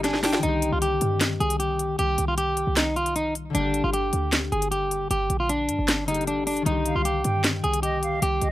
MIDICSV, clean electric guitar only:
0, 0, Header, 1, 2, 480
1, 0, Start_track
1, 0, Key_signature, -3, "minor"
1, 0, Tempo, 389610
1, 531, Time_signature, 4, 2, 24, 8
1, 10493, End_track
2, 0, Start_track
2, 0, Title_t, "Clean electric guitar"
2, 0, Program_c, 0, 27
2, 52, Note_on_c, 0, 62, 74
2, 265, Note_off_c, 0, 62, 0
2, 291, Note_on_c, 0, 62, 78
2, 504, Note_off_c, 0, 62, 0
2, 532, Note_on_c, 0, 63, 104
2, 870, Note_off_c, 0, 63, 0
2, 894, Note_on_c, 0, 65, 82
2, 999, Note_off_c, 0, 65, 0
2, 1009, Note_on_c, 0, 67, 79
2, 1461, Note_off_c, 0, 67, 0
2, 1730, Note_on_c, 0, 68, 84
2, 1944, Note_off_c, 0, 68, 0
2, 1966, Note_on_c, 0, 67, 81
2, 2420, Note_off_c, 0, 67, 0
2, 2452, Note_on_c, 0, 67, 118
2, 2790, Note_off_c, 0, 67, 0
2, 2811, Note_on_c, 0, 65, 88
2, 2918, Note_off_c, 0, 65, 0
2, 2929, Note_on_c, 0, 67, 91
2, 3381, Note_off_c, 0, 67, 0
2, 3412, Note_on_c, 0, 63, 81
2, 3625, Note_off_c, 0, 63, 0
2, 3650, Note_on_c, 0, 65, 81
2, 3864, Note_off_c, 0, 65, 0
2, 3891, Note_on_c, 0, 63, 88
2, 4104, Note_off_c, 0, 63, 0
2, 4369, Note_on_c, 0, 62, 110
2, 4709, Note_off_c, 0, 62, 0
2, 4730, Note_on_c, 0, 65, 80
2, 4837, Note_off_c, 0, 65, 0
2, 4850, Note_on_c, 0, 67, 86
2, 5302, Note_off_c, 0, 67, 0
2, 5570, Note_on_c, 0, 68, 78
2, 5784, Note_off_c, 0, 68, 0
2, 5808, Note_on_c, 0, 67, 79
2, 6261, Note_off_c, 0, 67, 0
2, 6293, Note_on_c, 0, 67, 96
2, 6631, Note_off_c, 0, 67, 0
2, 6651, Note_on_c, 0, 65, 78
2, 6758, Note_off_c, 0, 65, 0
2, 6770, Note_on_c, 0, 62, 80
2, 7447, Note_off_c, 0, 62, 0
2, 7490, Note_on_c, 0, 63, 84
2, 7704, Note_off_c, 0, 63, 0
2, 7730, Note_on_c, 0, 62, 73
2, 7944, Note_off_c, 0, 62, 0
2, 7969, Note_on_c, 0, 62, 73
2, 8183, Note_off_c, 0, 62, 0
2, 8211, Note_on_c, 0, 63, 100
2, 8549, Note_off_c, 0, 63, 0
2, 8571, Note_on_c, 0, 65, 85
2, 8678, Note_off_c, 0, 65, 0
2, 8689, Note_on_c, 0, 67, 78
2, 9141, Note_off_c, 0, 67, 0
2, 9409, Note_on_c, 0, 68, 83
2, 9624, Note_off_c, 0, 68, 0
2, 9645, Note_on_c, 0, 67, 80
2, 10099, Note_off_c, 0, 67, 0
2, 10133, Note_on_c, 0, 67, 114
2, 10471, Note_off_c, 0, 67, 0
2, 10493, End_track
0, 0, End_of_file